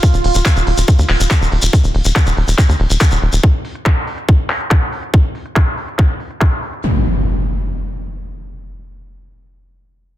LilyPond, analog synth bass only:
\new Staff \with { instrumentName = "Analog synth bass" } { \clef bass \time 4/4 \key ees \dorian \tempo 4 = 141 r16 ees,,16 ees,,16 ees,,16 r16 ees,,16 ees,,16 ees,,16 r16 ees,16 ees,,16 ees,,16 r16 ees,,16 ees,,16 ees,,16 | r16 ees,,16 ees,,16 ees,,16 r16 ees,,16 ees,,16 ees,,16 r16 ees,16 ees,,16 ees,,16 r16 ees,,16 ees,,16 ees,,16 | r1 | r1 |
r1 | r1 | }